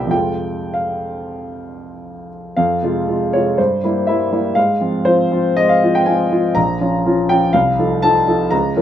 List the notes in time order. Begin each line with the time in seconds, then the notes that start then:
Already playing: C2 A#2 C3 G3 G4 E5 G5
0.07 F2 C3 G#3 F4 G5
0.74 F5
2.56 F2 F5
2.83 C3 G#3 F4
3.07 C3 G#3 F4
3.33 C3 G#3 F4 C#5
3.58 G2 C5
3.83 G3 A#3 E4
4.07 G3 A#3 E4 E5
4.32 G3 A#3 E4
4.55 G#2 F5
4.81 F3 C4 F4
5.05 F3 C4 F4 C5
5.31 F3 C4 F4
5.57 G#2 D#5
5.69 F5
5.83 F3 C4 F4
5.95 G5
6.06 F3 C4 F4 G#5
6.32 F3 C4 F4
6.55 A#1 A#5
6.80 F3 C#4 F4
7.06 F3 C#4 F4
7.29 F3 C#4 F4 G5
7.53 C2 F5
7.79 F3 D#4 A4
8.02 F3 D#4 A4 A5
8.27 F3 D#4 A4
8.51 C#2 A#5
8.76 F3 C#4 A#4